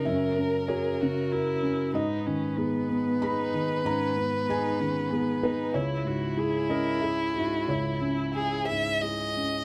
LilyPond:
<<
  \new Staff \with { instrumentName = "Violin" } { \time 3/4 \key cis \dorian \tempo 4 = 95 ais'2. | b'2.~ | b'2. | e'2.~ |
e'4 gis'8 e''8 dis''4 | }
  \new Staff \with { instrumentName = "Felt piano" } { \time 3/4 \key cis \dorian << { e''4 cis''4 r4 | dis''2 b''4 | ais''4 gis''4. b'8 | cis''4. dis''8 e''4 |
cis''2~ cis''8 r8 | } \\ { <fis, cis>8 cis'8 <fis' ais'>8 cis8 <fis' ais'>8 cis'8 | gis,8 dis8 <dis' gis'>8 b8 <dis' gis'>8 dis8 | gis,8 b8 <dis' gis'>8 dis8 <dis' gis'>8 b8 | cis,8 gis,8 <e' gis'>8 cis'8 <e' gis'>8 gis,8 |
cis,8 cis'8 <e' gis'>8 gis,8 <e' gis'>8 cis'8 | } >> }
  \new Staff \with { instrumentName = "Viola" } { \time 3/4 \key cis \dorian cis'8 ais'8 gis'8 fis'8 e'4 | dis'8 cis'8 b4 dis'4 | cis'8 b8 dis'8 cis'8 b8 dis'8 | e'8 fis'8 gis'8 ais'8 gis'8 fis'8 |
e'2~ e'8 r8 | }
>>